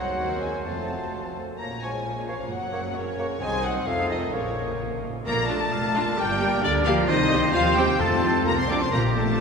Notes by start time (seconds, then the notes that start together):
Already playing: C2 F#3 C4 F#4 C5 F#5
0.17 D#2 F#3 C4 F#4 A#4 C5
0.41 G#3 G#5
0.65 F1 F2 F3 A3 C4 F4 A4 C5 A5
1.13 C5
1.35 A4
1.58 A#1 A#2 F3 A#3 C#5 A#5
1.71 C#4
1.82 F3 G#3 A#3 C#5 G#5
1.94 C#4
2.06 A#3 F4
2.16 C#4
2.28 F3 A#3 C#5 F5
2.38 C#4
2.50 F#1 F#2 F#3 A#3 F#4 F#5
2.61 C#4
2.72 A#3 C#5
2.85 C#4
2.95 C#3 A#3 A#4 C#5
3.07 C#4
3.18 A#3 C#5
3.29 C#4
3.40 C2 D#3 G#3 C4 D#4 C5 D#5 G#5
3.64 F#3 F#5
3.85 F1 F2 F3 A3 C4 D#4 A4 D#5 F5
4.10 D#3 D#5
4.32 A#1 A#2 C#3 F3 A#3 C#4 A#4 C#5
4.41 A#2
4.48 A#2
4.56 A#2
4.64 A#2
4.71 A#2
4.79 A#2
4.87 A#2
4.94 A#2
5.02 A#2
5.09 A#2
5.17 A#2
5.26 A#1 A#2 A#3 F4 A#4 D5 A#5
5.48 A3 D4 F4 A4 A5
5.72 F1 F5
5.95 D4 F4
6.17 G1 G3 A#3 G4 A#4 D5 G5
6.40 A#3 G4
6.62 D2 D3 A#3 D4 G4 D5
6.84 F3 A#3 F4 G4 F5
7.07 C2 D#3 C4 D#4 G4 C5 D#5
7.32 C4 G4
7.53 D#2 F3 F4 G4 C5 F5
7.57 C4
7.76 G3 C4 G4 G5
7.98 F2 A3 C4 F4 A4 C5 A5
8.23 C4 F4
8.46 C2 A#3 A#4 A#5
8.57 C4 C5 C6
8.68 C4 D4 F4 D5 D6
8.80 C4 C5 C6
8.91 A#1 A#2 D3 A#3 F4 G4 A#4 D5 A#5
9.05 F3
9.16 A3 A#3 A4 A5
9.28 D4